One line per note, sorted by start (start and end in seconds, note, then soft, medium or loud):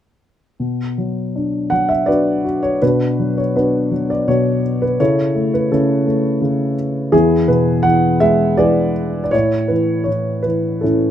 0.60 2.78 B2 soft
0.98 1.70 F#3 soft
1.36 2.06 D4 soft
1.70 2.79 F#3 soft
1.70 1.89 F#5 medium
1.89 2.08 E5 medium
2.06 2.80 D4 soft
2.06 2.43 F#4 soft
2.06 2.78 B4 medium
2.06 2.58 D5 medium
2.44 2.81 F#4 soft
2.63 2.81 C#5 medium
2.82 4.26 B2 soft
2.82 3.55 D4 soft
2.82 3.55 F#4 soft
2.82 3.40 B4 medium
3.20 3.90 F#3 soft
3.38 3.56 C#5 medium
3.55 4.95 B3 soft
3.55 4.60 D4 soft
3.55 4.27 F#4 soft
3.55 4.11 B4 medium
3.91 4.96 F#3 soft
4.10 4.28 D5 medium
4.28 4.98 B2 soft
4.28 4.96 F#4 soft
4.28 4.83 C#5 medium
4.82 4.99 B4 medium
4.99 5.70 C#3 soft
4.99 5.71 E4 soft
4.99 5.70 A4 medium
4.99 5.50 C#5 medium
5.35 6.05 A3 soft
5.54 5.70 B4 medium
5.72 6.40 C#3 soft
5.72 6.74 C#4 soft
5.72 6.74 E4 soft
5.72 6.73 A4 medium
6.06 7.09 A3 soft
6.42 7.10 C#3 soft
7.12 9.29 E2 soft
7.12 8.17 B3 medium
7.12 8.17 E4 medium
7.12 7.49 G#4 medium
7.48 8.92 B2 soft
7.48 7.85 B4 medium
7.83 8.57 E3 soft
7.83 8.21 F#5 medium
8.20 9.30 G#3 medium
8.20 8.55 E5 medium
8.57 9.31 E3 soft
8.57 9.29 G#4 medium
8.57 9.29 B4 medium
8.57 9.22 D5 medium
9.24 9.32 D5 medium
9.31 10.06 A2 soft
9.31 10.41 E4 soft
9.31 9.71 C#5 medium
9.68 10.44 E3 soft
9.68 10.07 B4 medium
10.04 10.82 A2 soft
10.04 10.40 C#5 medium
10.43 11.11 E3 soft
10.43 10.83 B4 medium
10.81 11.11 A2 soft
10.81 11.11 C#4 soft
10.81 11.11 E4 soft
10.81 11.11 A4 soft